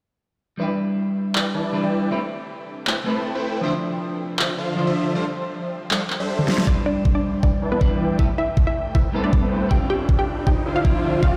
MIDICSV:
0, 0, Header, 1, 7, 480
1, 0, Start_track
1, 0, Tempo, 379747
1, 752, Time_signature, 4, 2, 24, 8
1, 14369, End_track
2, 0, Start_track
2, 0, Title_t, "Ambient pad"
2, 0, Program_c, 0, 92
2, 754, Note_on_c, 0, 76, 84
2, 755, Note_on_c, 0, 62, 78
2, 755, Note_on_c, 0, 67, 68
2, 2654, Note_off_c, 0, 76, 0
2, 2655, Note_off_c, 0, 62, 0
2, 2655, Note_off_c, 0, 67, 0
2, 2673, Note_on_c, 0, 60, 79
2, 2674, Note_on_c, 0, 69, 70
2, 2674, Note_on_c, 0, 79, 84
2, 2675, Note_on_c, 0, 71, 70
2, 4574, Note_off_c, 0, 60, 0
2, 4574, Note_off_c, 0, 69, 0
2, 4574, Note_off_c, 0, 71, 0
2, 4574, Note_off_c, 0, 79, 0
2, 4591, Note_on_c, 0, 72, 72
2, 4592, Note_on_c, 0, 53, 69
2, 4592, Note_on_c, 0, 62, 75
2, 4593, Note_on_c, 0, 76, 87
2, 6493, Note_off_c, 0, 62, 0
2, 6494, Note_off_c, 0, 76, 0
2, 6514, Note_on_c, 0, 79, 86
2, 8393, Note_off_c, 0, 72, 0
2, 8394, Note_off_c, 0, 53, 0
2, 8414, Note_off_c, 0, 79, 0
2, 8431, Note_on_c, 0, 74, 73
2, 8432, Note_on_c, 0, 64, 79
2, 8432, Note_on_c, 0, 79, 86
2, 10333, Note_off_c, 0, 64, 0
2, 10333, Note_off_c, 0, 74, 0
2, 10352, Note_on_c, 0, 69, 70
2, 10352, Note_on_c, 0, 71, 70
2, 12234, Note_off_c, 0, 79, 0
2, 12253, Note_off_c, 0, 69, 0
2, 12253, Note_off_c, 0, 71, 0
2, 12272, Note_on_c, 0, 72, 70
2, 12273, Note_on_c, 0, 62, 77
2, 12273, Note_on_c, 0, 74, 88
2, 14174, Note_off_c, 0, 62, 0
2, 14174, Note_off_c, 0, 74, 0
2, 14369, Note_off_c, 0, 72, 0
2, 14369, End_track
3, 0, Start_track
3, 0, Title_t, "Supersaw synth"
3, 0, Program_c, 1, 81
3, 750, Note_on_c, 1, 52, 82
3, 750, Note_on_c, 1, 79, 89
3, 751, Note_on_c, 1, 64, 75
3, 751, Note_on_c, 1, 71, 76
3, 751, Note_on_c, 1, 74, 76
3, 868, Note_off_c, 1, 52, 0
3, 868, Note_off_c, 1, 79, 0
3, 869, Note_off_c, 1, 64, 0
3, 869, Note_off_c, 1, 71, 0
3, 869, Note_off_c, 1, 74, 0
3, 1709, Note_on_c, 1, 71, 64
3, 1710, Note_on_c, 1, 52, 69
3, 1710, Note_on_c, 1, 64, 65
3, 1710, Note_on_c, 1, 74, 62
3, 1710, Note_on_c, 1, 79, 73
3, 1828, Note_off_c, 1, 52, 0
3, 1828, Note_off_c, 1, 64, 0
3, 1828, Note_off_c, 1, 71, 0
3, 1828, Note_off_c, 1, 74, 0
3, 1829, Note_off_c, 1, 79, 0
3, 1951, Note_on_c, 1, 71, 63
3, 1952, Note_on_c, 1, 52, 71
3, 1952, Note_on_c, 1, 64, 64
3, 1952, Note_on_c, 1, 74, 61
3, 1952, Note_on_c, 1, 81, 75
3, 2286, Note_off_c, 1, 52, 0
3, 2286, Note_off_c, 1, 64, 0
3, 2286, Note_off_c, 1, 71, 0
3, 2286, Note_off_c, 1, 74, 0
3, 2286, Note_off_c, 1, 81, 0
3, 2315, Note_on_c, 1, 52, 84
3, 2315, Note_on_c, 1, 64, 84
3, 2315, Note_on_c, 1, 74, 82
3, 2316, Note_on_c, 1, 71, 78
3, 2316, Note_on_c, 1, 79, 93
3, 2644, Note_off_c, 1, 52, 0
3, 2644, Note_off_c, 1, 64, 0
3, 2644, Note_off_c, 1, 71, 0
3, 2644, Note_off_c, 1, 74, 0
3, 2644, Note_off_c, 1, 79, 0
3, 2672, Note_on_c, 1, 57, 81
3, 2672, Note_on_c, 1, 64, 78
3, 2672, Note_on_c, 1, 72, 75
3, 2672, Note_on_c, 1, 79, 91
3, 2673, Note_on_c, 1, 71, 74
3, 2789, Note_off_c, 1, 57, 0
3, 2790, Note_off_c, 1, 64, 0
3, 2790, Note_off_c, 1, 71, 0
3, 2790, Note_off_c, 1, 72, 0
3, 2790, Note_off_c, 1, 79, 0
3, 3631, Note_on_c, 1, 64, 62
3, 3632, Note_on_c, 1, 57, 70
3, 3632, Note_on_c, 1, 71, 65
3, 3632, Note_on_c, 1, 72, 64
3, 3632, Note_on_c, 1, 79, 76
3, 3749, Note_off_c, 1, 57, 0
3, 3749, Note_off_c, 1, 64, 0
3, 3749, Note_off_c, 1, 71, 0
3, 3749, Note_off_c, 1, 79, 0
3, 3750, Note_off_c, 1, 72, 0
3, 3870, Note_on_c, 1, 64, 64
3, 3870, Note_on_c, 1, 71, 60
3, 3871, Note_on_c, 1, 57, 69
3, 3871, Note_on_c, 1, 72, 63
3, 3871, Note_on_c, 1, 81, 78
3, 4205, Note_off_c, 1, 64, 0
3, 4205, Note_off_c, 1, 71, 0
3, 4206, Note_off_c, 1, 57, 0
3, 4206, Note_off_c, 1, 72, 0
3, 4206, Note_off_c, 1, 81, 0
3, 4234, Note_on_c, 1, 72, 86
3, 4235, Note_on_c, 1, 57, 87
3, 4235, Note_on_c, 1, 64, 83
3, 4235, Note_on_c, 1, 71, 83
3, 4235, Note_on_c, 1, 79, 101
3, 4564, Note_off_c, 1, 57, 0
3, 4564, Note_off_c, 1, 64, 0
3, 4564, Note_off_c, 1, 71, 0
3, 4564, Note_off_c, 1, 72, 0
3, 4564, Note_off_c, 1, 79, 0
3, 4591, Note_on_c, 1, 50, 83
3, 4591, Note_on_c, 1, 62, 75
3, 4591, Note_on_c, 1, 65, 77
3, 4591, Note_on_c, 1, 72, 75
3, 4591, Note_on_c, 1, 76, 91
3, 4709, Note_off_c, 1, 50, 0
3, 4709, Note_off_c, 1, 62, 0
3, 4709, Note_off_c, 1, 65, 0
3, 4709, Note_off_c, 1, 72, 0
3, 4709, Note_off_c, 1, 76, 0
3, 5551, Note_on_c, 1, 50, 68
3, 5551, Note_on_c, 1, 65, 64
3, 5551, Note_on_c, 1, 72, 64
3, 5551, Note_on_c, 1, 76, 78
3, 5552, Note_on_c, 1, 62, 61
3, 5669, Note_off_c, 1, 50, 0
3, 5669, Note_off_c, 1, 62, 0
3, 5669, Note_off_c, 1, 65, 0
3, 5669, Note_off_c, 1, 72, 0
3, 5669, Note_off_c, 1, 76, 0
3, 5792, Note_on_c, 1, 50, 69
3, 5792, Note_on_c, 1, 65, 63
3, 5792, Note_on_c, 1, 77, 77
3, 5793, Note_on_c, 1, 62, 64
3, 5793, Note_on_c, 1, 72, 66
3, 6126, Note_off_c, 1, 50, 0
3, 6126, Note_off_c, 1, 65, 0
3, 6126, Note_off_c, 1, 77, 0
3, 6127, Note_off_c, 1, 62, 0
3, 6127, Note_off_c, 1, 72, 0
3, 6155, Note_on_c, 1, 50, 90
3, 6155, Note_on_c, 1, 62, 78
3, 6155, Note_on_c, 1, 65, 80
3, 6155, Note_on_c, 1, 72, 85
3, 6156, Note_on_c, 1, 76, 103
3, 6484, Note_off_c, 1, 50, 0
3, 6484, Note_off_c, 1, 62, 0
3, 6484, Note_off_c, 1, 65, 0
3, 6484, Note_off_c, 1, 72, 0
3, 6484, Note_off_c, 1, 76, 0
3, 6511, Note_on_c, 1, 55, 82
3, 6511, Note_on_c, 1, 62, 76
3, 6511, Note_on_c, 1, 69, 76
3, 6512, Note_on_c, 1, 72, 77
3, 6512, Note_on_c, 1, 77, 90
3, 6629, Note_off_c, 1, 55, 0
3, 6629, Note_off_c, 1, 62, 0
3, 6629, Note_off_c, 1, 69, 0
3, 6629, Note_off_c, 1, 72, 0
3, 6629, Note_off_c, 1, 77, 0
3, 7472, Note_on_c, 1, 72, 64
3, 7473, Note_on_c, 1, 55, 70
3, 7473, Note_on_c, 1, 62, 65
3, 7473, Note_on_c, 1, 69, 67
3, 7473, Note_on_c, 1, 77, 75
3, 7589, Note_off_c, 1, 72, 0
3, 7590, Note_off_c, 1, 55, 0
3, 7590, Note_off_c, 1, 62, 0
3, 7590, Note_off_c, 1, 69, 0
3, 7590, Note_off_c, 1, 77, 0
3, 7834, Note_on_c, 1, 55, 72
3, 7835, Note_on_c, 1, 62, 69
3, 7835, Note_on_c, 1, 69, 70
3, 7835, Note_on_c, 1, 72, 67
3, 7835, Note_on_c, 1, 76, 82
3, 8403, Note_off_c, 1, 55, 0
3, 8404, Note_off_c, 1, 62, 0
3, 8404, Note_off_c, 1, 69, 0
3, 8404, Note_off_c, 1, 72, 0
3, 8404, Note_off_c, 1, 76, 0
3, 8431, Note_on_c, 1, 52, 83
3, 8431, Note_on_c, 1, 64, 77
3, 8431, Note_on_c, 1, 71, 75
3, 8431, Note_on_c, 1, 74, 76
3, 8549, Note_off_c, 1, 52, 0
3, 8549, Note_off_c, 1, 64, 0
3, 8549, Note_off_c, 1, 71, 0
3, 8549, Note_off_c, 1, 74, 0
3, 9390, Note_on_c, 1, 52, 71
3, 9390, Note_on_c, 1, 71, 64
3, 9390, Note_on_c, 1, 74, 65
3, 9390, Note_on_c, 1, 79, 80
3, 9391, Note_on_c, 1, 64, 64
3, 9508, Note_off_c, 1, 52, 0
3, 9508, Note_off_c, 1, 71, 0
3, 9508, Note_off_c, 1, 74, 0
3, 9509, Note_off_c, 1, 64, 0
3, 9509, Note_off_c, 1, 79, 0
3, 9631, Note_on_c, 1, 71, 63
3, 9632, Note_on_c, 1, 52, 69
3, 9632, Note_on_c, 1, 64, 66
3, 9632, Note_on_c, 1, 74, 64
3, 9632, Note_on_c, 1, 81, 74
3, 9966, Note_off_c, 1, 64, 0
3, 9966, Note_off_c, 1, 71, 0
3, 9966, Note_off_c, 1, 74, 0
3, 9966, Note_off_c, 1, 81, 0
3, 9967, Note_off_c, 1, 52, 0
3, 9996, Note_on_c, 1, 52, 90
3, 9996, Note_on_c, 1, 64, 84
3, 9996, Note_on_c, 1, 71, 83
3, 9996, Note_on_c, 1, 74, 84
3, 9996, Note_on_c, 1, 79, 104
3, 10324, Note_off_c, 1, 52, 0
3, 10324, Note_off_c, 1, 64, 0
3, 10324, Note_off_c, 1, 71, 0
3, 10324, Note_off_c, 1, 79, 0
3, 10325, Note_off_c, 1, 74, 0
3, 10351, Note_on_c, 1, 79, 94
3, 10469, Note_off_c, 1, 79, 0
3, 11311, Note_on_c, 1, 57, 71
3, 11311, Note_on_c, 1, 71, 65
3, 11311, Note_on_c, 1, 72, 63
3, 11311, Note_on_c, 1, 79, 78
3, 11312, Note_on_c, 1, 64, 65
3, 11429, Note_off_c, 1, 57, 0
3, 11429, Note_off_c, 1, 64, 0
3, 11429, Note_off_c, 1, 71, 0
3, 11429, Note_off_c, 1, 72, 0
3, 11429, Note_off_c, 1, 79, 0
3, 11550, Note_on_c, 1, 81, 77
3, 11551, Note_on_c, 1, 57, 69
3, 11551, Note_on_c, 1, 64, 63
3, 11551, Note_on_c, 1, 71, 66
3, 11551, Note_on_c, 1, 72, 64
3, 11885, Note_off_c, 1, 81, 0
3, 11886, Note_off_c, 1, 57, 0
3, 11886, Note_off_c, 1, 64, 0
3, 11886, Note_off_c, 1, 71, 0
3, 11886, Note_off_c, 1, 72, 0
3, 11915, Note_on_c, 1, 57, 94
3, 11915, Note_on_c, 1, 64, 84
3, 11915, Note_on_c, 1, 72, 81
3, 11916, Note_on_c, 1, 71, 87
3, 11916, Note_on_c, 1, 79, 100
3, 12244, Note_off_c, 1, 57, 0
3, 12244, Note_off_c, 1, 64, 0
3, 12244, Note_off_c, 1, 71, 0
3, 12244, Note_off_c, 1, 72, 0
3, 12244, Note_off_c, 1, 79, 0
3, 12272, Note_on_c, 1, 50, 85
3, 12272, Note_on_c, 1, 65, 79
3, 12272, Note_on_c, 1, 72, 74
3, 12272, Note_on_c, 1, 76, 89
3, 12389, Note_off_c, 1, 50, 0
3, 12389, Note_off_c, 1, 65, 0
3, 12389, Note_off_c, 1, 72, 0
3, 12389, Note_off_c, 1, 76, 0
3, 13232, Note_on_c, 1, 50, 73
3, 13232, Note_on_c, 1, 62, 64
3, 13232, Note_on_c, 1, 72, 65
3, 13232, Note_on_c, 1, 76, 82
3, 13233, Note_on_c, 1, 65, 65
3, 13349, Note_off_c, 1, 50, 0
3, 13349, Note_off_c, 1, 62, 0
3, 13349, Note_off_c, 1, 72, 0
3, 13349, Note_off_c, 1, 76, 0
3, 13350, Note_off_c, 1, 65, 0
3, 13472, Note_on_c, 1, 65, 65
3, 13473, Note_on_c, 1, 50, 71
3, 13473, Note_on_c, 1, 62, 63
3, 13473, Note_on_c, 1, 72, 64
3, 13473, Note_on_c, 1, 77, 75
3, 13806, Note_off_c, 1, 65, 0
3, 13807, Note_off_c, 1, 50, 0
3, 13807, Note_off_c, 1, 62, 0
3, 13807, Note_off_c, 1, 72, 0
3, 13807, Note_off_c, 1, 77, 0
3, 13836, Note_on_c, 1, 62, 84
3, 13836, Note_on_c, 1, 76, 102
3, 13837, Note_on_c, 1, 50, 92
3, 13837, Note_on_c, 1, 65, 84
3, 13837, Note_on_c, 1, 72, 87
3, 14165, Note_off_c, 1, 50, 0
3, 14165, Note_off_c, 1, 62, 0
3, 14165, Note_off_c, 1, 65, 0
3, 14165, Note_off_c, 1, 72, 0
3, 14165, Note_off_c, 1, 76, 0
3, 14192, Note_on_c, 1, 72, 77
3, 14193, Note_on_c, 1, 55, 85
3, 14193, Note_on_c, 1, 62, 76
3, 14193, Note_on_c, 1, 69, 74
3, 14310, Note_off_c, 1, 55, 0
3, 14310, Note_off_c, 1, 62, 0
3, 14310, Note_off_c, 1, 69, 0
3, 14310, Note_off_c, 1, 72, 0
3, 14369, End_track
4, 0, Start_track
4, 0, Title_t, "Synth pluck"
4, 0, Program_c, 2, 84
4, 8434, Note_on_c, 2, 62, 73
4, 8434, Note_on_c, 2, 74, 96
4, 8647, Note_off_c, 2, 62, 0
4, 8647, Note_off_c, 2, 74, 0
4, 8672, Note_on_c, 2, 62, 82
4, 8672, Note_on_c, 2, 74, 93
4, 8993, Note_off_c, 2, 62, 0
4, 8993, Note_off_c, 2, 74, 0
4, 9037, Note_on_c, 2, 62, 78
4, 9037, Note_on_c, 2, 74, 94
4, 9353, Note_off_c, 2, 62, 0
4, 9353, Note_off_c, 2, 74, 0
4, 9393, Note_on_c, 2, 62, 75
4, 9394, Note_on_c, 2, 74, 94
4, 9714, Note_off_c, 2, 62, 0
4, 9714, Note_off_c, 2, 74, 0
4, 9756, Note_on_c, 2, 59, 76
4, 9756, Note_on_c, 2, 71, 90
4, 10259, Note_off_c, 2, 71, 0
4, 10260, Note_off_c, 2, 59, 0
4, 10354, Note_on_c, 2, 64, 76
4, 10354, Note_on_c, 2, 76, 99
4, 10567, Note_off_c, 2, 64, 0
4, 10567, Note_off_c, 2, 76, 0
4, 10595, Note_on_c, 2, 64, 77
4, 10595, Note_on_c, 2, 76, 99
4, 10915, Note_off_c, 2, 64, 0
4, 10915, Note_off_c, 2, 76, 0
4, 10959, Note_on_c, 2, 64, 79
4, 10959, Note_on_c, 2, 76, 94
4, 11274, Note_off_c, 2, 64, 0
4, 11274, Note_off_c, 2, 76, 0
4, 11313, Note_on_c, 2, 64, 73
4, 11313, Note_on_c, 2, 76, 91
4, 11634, Note_off_c, 2, 64, 0
4, 11634, Note_off_c, 2, 76, 0
4, 11676, Note_on_c, 2, 74, 94
4, 11677, Note_on_c, 2, 62, 73
4, 12179, Note_off_c, 2, 74, 0
4, 12180, Note_off_c, 2, 62, 0
4, 12274, Note_on_c, 2, 67, 75
4, 12274, Note_on_c, 2, 79, 98
4, 12486, Note_off_c, 2, 79, 0
4, 12487, Note_off_c, 2, 67, 0
4, 12513, Note_on_c, 2, 79, 94
4, 12514, Note_on_c, 2, 67, 80
4, 12834, Note_off_c, 2, 79, 0
4, 12835, Note_off_c, 2, 67, 0
4, 12876, Note_on_c, 2, 67, 77
4, 12876, Note_on_c, 2, 79, 92
4, 13192, Note_off_c, 2, 67, 0
4, 13192, Note_off_c, 2, 79, 0
4, 13232, Note_on_c, 2, 79, 92
4, 13233, Note_on_c, 2, 67, 75
4, 13553, Note_off_c, 2, 79, 0
4, 13554, Note_off_c, 2, 67, 0
4, 13597, Note_on_c, 2, 65, 74
4, 13597, Note_on_c, 2, 77, 91
4, 14100, Note_off_c, 2, 65, 0
4, 14100, Note_off_c, 2, 77, 0
4, 14189, Note_on_c, 2, 65, 75
4, 14190, Note_on_c, 2, 77, 99
4, 14369, Note_off_c, 2, 65, 0
4, 14369, Note_off_c, 2, 77, 0
4, 14369, End_track
5, 0, Start_track
5, 0, Title_t, "Clean electric guitar"
5, 0, Program_c, 3, 27
5, 727, Note_on_c, 3, 55, 80
5, 744, Note_on_c, 3, 62, 75
5, 760, Note_on_c, 3, 64, 72
5, 777, Note_on_c, 3, 71, 88
5, 2152, Note_off_c, 3, 55, 0
5, 2160, Note_off_c, 3, 62, 0
5, 2169, Note_off_c, 3, 64, 0
5, 2177, Note_off_c, 3, 71, 0
5, 2179, Note_on_c, 3, 55, 83
5, 2188, Note_on_c, 3, 62, 74
5, 2196, Note_on_c, 3, 64, 72
5, 2204, Note_on_c, 3, 71, 85
5, 2638, Note_off_c, 3, 55, 0
5, 2642, Note_off_c, 3, 62, 0
5, 2646, Note_off_c, 3, 64, 0
5, 2650, Note_off_c, 3, 71, 0
5, 2660, Note_on_c, 3, 57, 79
5, 2668, Note_on_c, 3, 60, 76
5, 2677, Note_on_c, 3, 67, 74
5, 2685, Note_on_c, 3, 71, 85
5, 2764, Note_off_c, 3, 57, 0
5, 2768, Note_off_c, 3, 60, 0
5, 2772, Note_off_c, 3, 67, 0
5, 2776, Note_off_c, 3, 71, 0
5, 3848, Note_on_c, 3, 57, 84
5, 3864, Note_on_c, 3, 60, 79
5, 3880, Note_on_c, 3, 67, 77
5, 3897, Note_on_c, 3, 71, 98
5, 4552, Note_off_c, 3, 57, 0
5, 4560, Note_off_c, 3, 60, 0
5, 4564, Note_on_c, 3, 53, 84
5, 4568, Note_off_c, 3, 67, 0
5, 4577, Note_off_c, 3, 71, 0
5, 4581, Note_on_c, 3, 62, 78
5, 4598, Note_on_c, 3, 64, 78
5, 4616, Note_on_c, 3, 72, 89
5, 5991, Note_off_c, 3, 53, 0
5, 5999, Note_off_c, 3, 62, 0
5, 6007, Note_off_c, 3, 64, 0
5, 6016, Note_off_c, 3, 72, 0
5, 6021, Note_on_c, 3, 53, 82
5, 6030, Note_on_c, 3, 62, 73
5, 6037, Note_on_c, 3, 64, 76
5, 6047, Note_on_c, 3, 72, 89
5, 6479, Note_off_c, 3, 53, 0
5, 6483, Note_off_c, 3, 62, 0
5, 6487, Note_off_c, 3, 64, 0
5, 6492, Note_off_c, 3, 72, 0
5, 6500, Note_on_c, 3, 55, 83
5, 6509, Note_on_c, 3, 62, 74
5, 6517, Note_on_c, 3, 65, 74
5, 6526, Note_on_c, 3, 72, 90
5, 6604, Note_off_c, 3, 55, 0
5, 6609, Note_off_c, 3, 62, 0
5, 6613, Note_off_c, 3, 65, 0
5, 6617, Note_off_c, 3, 72, 0
5, 8182, Note_on_c, 3, 55, 79
5, 8189, Note_on_c, 3, 62, 70
5, 8198, Note_on_c, 3, 65, 72
5, 8207, Note_on_c, 3, 72, 89
5, 8396, Note_off_c, 3, 55, 0
5, 8403, Note_off_c, 3, 62, 0
5, 8407, Note_off_c, 3, 65, 0
5, 8411, Note_on_c, 3, 55, 82
5, 8412, Note_off_c, 3, 72, 0
5, 8427, Note_on_c, 3, 62, 76
5, 8445, Note_on_c, 3, 64, 74
5, 8461, Note_on_c, 3, 71, 92
5, 9834, Note_off_c, 3, 55, 0
5, 9842, Note_off_c, 3, 62, 0
5, 9851, Note_off_c, 3, 64, 0
5, 9859, Note_off_c, 3, 71, 0
5, 9860, Note_on_c, 3, 55, 83
5, 9869, Note_on_c, 3, 62, 77
5, 9877, Note_on_c, 3, 64, 77
5, 9885, Note_on_c, 3, 71, 88
5, 10318, Note_off_c, 3, 55, 0
5, 10323, Note_off_c, 3, 62, 0
5, 10327, Note_off_c, 3, 64, 0
5, 10331, Note_off_c, 3, 71, 0
5, 10340, Note_on_c, 3, 55, 83
5, 10349, Note_on_c, 3, 59, 79
5, 10358, Note_on_c, 3, 60, 77
5, 10366, Note_on_c, 3, 69, 93
5, 10444, Note_off_c, 3, 55, 0
5, 10448, Note_off_c, 3, 59, 0
5, 10453, Note_off_c, 3, 60, 0
5, 10457, Note_off_c, 3, 69, 0
5, 11528, Note_on_c, 3, 55, 84
5, 11544, Note_on_c, 3, 59, 76
5, 11561, Note_on_c, 3, 60, 78
5, 11577, Note_on_c, 3, 69, 96
5, 12232, Note_off_c, 3, 55, 0
5, 12240, Note_off_c, 3, 59, 0
5, 12243, Note_off_c, 3, 69, 0
5, 12248, Note_on_c, 3, 64, 85
5, 12249, Note_off_c, 3, 60, 0
5, 12265, Note_on_c, 3, 60, 77
5, 12282, Note_on_c, 3, 62, 75
5, 12298, Note_on_c, 3, 65, 96
5, 13672, Note_off_c, 3, 64, 0
5, 13681, Note_off_c, 3, 60, 0
5, 13689, Note_off_c, 3, 62, 0
5, 13697, Note_off_c, 3, 65, 0
5, 13700, Note_on_c, 3, 53, 87
5, 13708, Note_on_c, 3, 60, 75
5, 13716, Note_on_c, 3, 62, 81
5, 13724, Note_on_c, 3, 65, 93
5, 14158, Note_off_c, 3, 53, 0
5, 14162, Note_off_c, 3, 60, 0
5, 14166, Note_off_c, 3, 62, 0
5, 14171, Note_off_c, 3, 65, 0
5, 14180, Note_on_c, 3, 53, 86
5, 14188, Note_on_c, 3, 60, 78
5, 14197, Note_on_c, 3, 62, 79
5, 14205, Note_on_c, 3, 67, 98
5, 14284, Note_off_c, 3, 53, 0
5, 14288, Note_off_c, 3, 60, 0
5, 14293, Note_off_c, 3, 62, 0
5, 14297, Note_off_c, 3, 67, 0
5, 14369, End_track
6, 0, Start_track
6, 0, Title_t, "Riser"
6, 0, Program_c, 4, 103
6, 8433, Note_on_c, 4, 60, 79
6, 14369, Note_off_c, 4, 60, 0
6, 14369, End_track
7, 0, Start_track
7, 0, Title_t, "Drums"
7, 1711, Note_on_c, 9, 39, 100
7, 1838, Note_off_c, 9, 39, 0
7, 3631, Note_on_c, 9, 39, 113
7, 3757, Note_off_c, 9, 39, 0
7, 5550, Note_on_c, 9, 39, 110
7, 5677, Note_off_c, 9, 39, 0
7, 7472, Note_on_c, 9, 39, 110
7, 7598, Note_off_c, 9, 39, 0
7, 7712, Note_on_c, 9, 39, 62
7, 7838, Note_off_c, 9, 39, 0
7, 8076, Note_on_c, 9, 48, 46
7, 8192, Note_on_c, 9, 38, 71
7, 8202, Note_off_c, 9, 48, 0
7, 8315, Note_off_c, 9, 38, 0
7, 8315, Note_on_c, 9, 38, 79
7, 8434, Note_on_c, 9, 36, 100
7, 8442, Note_off_c, 9, 38, 0
7, 8560, Note_off_c, 9, 36, 0
7, 8914, Note_on_c, 9, 36, 96
7, 9040, Note_off_c, 9, 36, 0
7, 9393, Note_on_c, 9, 36, 91
7, 9519, Note_off_c, 9, 36, 0
7, 9872, Note_on_c, 9, 36, 91
7, 9999, Note_off_c, 9, 36, 0
7, 10353, Note_on_c, 9, 36, 94
7, 10479, Note_off_c, 9, 36, 0
7, 10832, Note_on_c, 9, 36, 93
7, 10959, Note_off_c, 9, 36, 0
7, 11312, Note_on_c, 9, 36, 96
7, 11438, Note_off_c, 9, 36, 0
7, 11792, Note_on_c, 9, 36, 100
7, 11919, Note_off_c, 9, 36, 0
7, 12272, Note_on_c, 9, 36, 92
7, 12398, Note_off_c, 9, 36, 0
7, 12752, Note_on_c, 9, 36, 88
7, 12878, Note_off_c, 9, 36, 0
7, 13231, Note_on_c, 9, 36, 92
7, 13358, Note_off_c, 9, 36, 0
7, 13711, Note_on_c, 9, 36, 95
7, 13838, Note_off_c, 9, 36, 0
7, 14192, Note_on_c, 9, 36, 100
7, 14318, Note_off_c, 9, 36, 0
7, 14369, End_track
0, 0, End_of_file